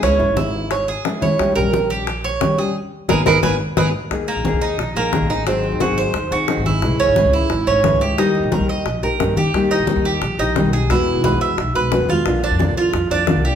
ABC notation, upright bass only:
X:1
M:4/4
L:1/16
Q:1/4=177
K:G#m
V:1 name="Upright bass" clef=bass
C,,2 G,,, G,,,8 z4 z | D,,2 A,,, A,,,8 z4 z | z4 G,,,2 G,,,2 G,,,2 z2 G,,,2 z2 | [K:D#phr] D,,3 A,,,2 D,,2 z A,,,2 A,,,3 =A,,,3 |
G,,,3 D,,2 G,,,2 z D,,2 D,,3 G,,,3 | C,,3 G,,,2 C,,2 z G,,,2 G,,,3 C,,3 | D,,3 A,,,2 D,,2 z A,,,2 A,,,2 =G,,2 D,,2 | D,,3 A,,,2 D,,2 z A,,,2 A,,,3 B,,,3 |
E,,3 B,,,2 E,,2 z B,,,2 B,,,3 E,,3 | A,,,3 ^E,,2 A,,,2 z E,,2 E,,3 ^B,,,3 |]